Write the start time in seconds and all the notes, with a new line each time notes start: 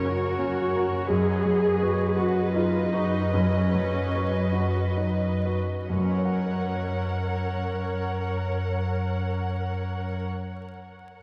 Already playing: F#2 C#3 F#4 A#4 C#5
0.04 F#4 A#4
0.39 C#4
0.75 F#4 A#4
1.10 F#2 G#4 B4 D#5
1.45 F#3
1.82 F#4 B4
2.18 F#4 B4
2.55 D#4 F4
2.93 D#4 F#4 B4
3.34 F#2 C#4
3.74 F#3
4.15 F#4 B4
4.54 F#4 B4
4.97 D#4
5.45 F#4 B4
5.87 F#2 A#4 C#5 F#5
5.96 F#3
6.03 C#4
6.11 F#4
6.18 C#5
6.25 F#5